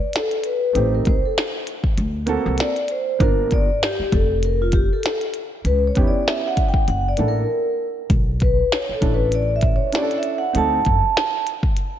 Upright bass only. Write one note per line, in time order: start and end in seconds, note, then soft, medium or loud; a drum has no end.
0.75 0.99 A1 medium
1.07 1.20 C2 medium
1.98 2.35 D2 medium
2.46 2.56 C2 medium
3.20 3.68 G1 loud
3.99 muted upright bass stroke soft
4.13 4.87 F1 medium
5.65 5.89 C#2 medium
5.97 6.10 E2 medium
6.88 7.12 F#1 medium
7.19 7.42 A1 medium
8.10 8.58 B1 medium
8.89 muted upright bass stroke soft
9.02 9.77 A1 medium
10.55 10.79 D2 medium
10.87 11.00 F#2 medium